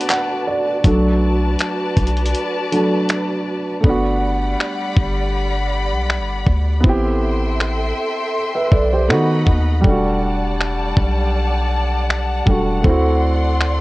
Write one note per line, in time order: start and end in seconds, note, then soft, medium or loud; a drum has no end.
0.00 0.79 A3 medium
0.00 0.81 B3 medium
0.00 0.82 D4 medium
0.00 0.81 F#4 medium
0.00 0.84 F#4 medium
0.00 0.83 B4 medium
0.00 0.82 D5 medium
0.00 0.80 A5 medium
0.00 0.86 A5 medium
0.00 closed hi-hat medium
0.09 0.44 F#5 medium
0.09 clap loud
0.09 closed hi-hat medium
0.47 0.82 D5 medium
0.84 1.56 B1 loud
0.84 1.93 F#3 medium
0.84 1.93 A3 medium
0.84 1.93 D4 medium
0.84 3.81 F#4 medium
0.84 3.81 B4 medium
0.84 3.81 D5 medium
0.84 3.81 A5 medium
0.84 kick loud
0.84 closed hi-hat medium
1.59 finger snap loud
1.59 closed hi-hat medium
1.97 2.34 B1 loud
1.97 kick medium
1.97 closed hi-hat soft
2.07 closed hi-hat soft
2.17 closed hi-hat medium
2.26 closed hi-hat medium
2.35 closed hi-hat medium
2.72 3.06 F#3 soft
2.72 3.06 A3 soft
2.72 3.06 D4 soft
2.72 closed hi-hat medium
3.09 finger snap loud
3.09 closed hi-hat medium
3.81 4.56 G1 loud
3.81 6.81 G3 medium
3.81 6.78 A3 medium
3.81 6.79 B3 medium
3.81 6.81 D5 medium
3.81 6.81 F#5 medium
3.81 6.81 B5 medium
3.81 kick loud
3.86 6.81 D4 medium
3.86 6.83 F#4 medium
4.60 finger snap loud
4.97 5.93 G1 loud
4.97 kick medium
5.92 6.20 B1 loud
6.10 finger snap loud
6.19 6.45 G1 medium
6.47 6.83 D2 medium
6.47 kick medium
6.80 7.93 A1 loud
6.80 9.03 B3 medium
6.80 9.05 C4 medium
6.80 9.07 A4 medium
6.80 9.07 E5 medium
6.80 9.07 G5 medium
6.80 9.07 C6 medium
6.80 kick loud
6.86 9.06 E4 medium
6.86 8.34 G4 medium
7.60 finger snap loud
8.55 8.71 B4 medium
8.55 8.71 E5 medium
8.72 9.10 B1 loud
8.72 8.92 A4 medium
8.72 8.91 D5 medium
8.72 kick medium
8.93 9.28 G4 medium
8.93 9.28 C5 medium
9.08 9.45 D#3 medium
9.08 9.82 A3 medium
9.08 9.84 B3 medium
9.08 9.85 D#4 medium
9.08 9.83 A4 medium
9.08 9.83 D#5 medium
9.08 9.83 F#5 medium
9.08 9.84 B5 medium
9.08 finger snap loud
9.12 9.86 F#4 medium
9.47 9.83 D#2 loud
9.47 kick loud
9.81 10.93 E1 loud
9.81 12.41 G3 medium
9.81 12.81 G3 medium
9.81 12.42 A3 medium
9.81 12.81 D5 medium
9.81 13.81 F#5 medium
9.81 12.81 A5 medium
9.81 kick loud
9.86 12.44 D4 medium
9.86 12.45 F#4 medium
10.60 finger snap loud
10.97 12.43 B1 loud
10.97 kick medium
12.10 finger snap loud
12.46 12.83 E1 loud
12.46 12.84 G3 medium
12.46 12.79 A3 soft
12.46 12.85 D4 soft
12.46 kick medium
12.50 12.86 F#4 medium
12.81 13.81 D2 loud
12.81 13.81 A3 medium
12.81 13.81 C4 medium
12.81 13.81 A4 medium
12.81 13.81 D5 medium
12.81 13.81 C6 medium
12.81 kick loud
12.86 13.81 E4 medium
12.86 13.81 F#4 medium
13.61 finger snap loud